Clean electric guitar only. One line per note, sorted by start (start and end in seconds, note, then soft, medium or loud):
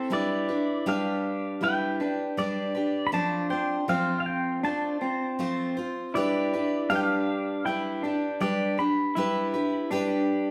0.00 0.11 C4 medium
0.12 0.86 E4 medium
0.88 1.61 D4 medium
1.63 2.00 E4 medium
2.01 2.75 D4 medium
3.14 3.87 D4 medium
3.89 4.63 C4 medium
4.63 5.01 D4 medium
5.02 5.75 C4 medium
6.14 6.88 E4 medium
6.90 7.63 D4 medium
7.65 8.02 E4 medium
8.03 8.77 D4 medium
9.15 9.89 E4 medium
9.91 10.51 D4 medium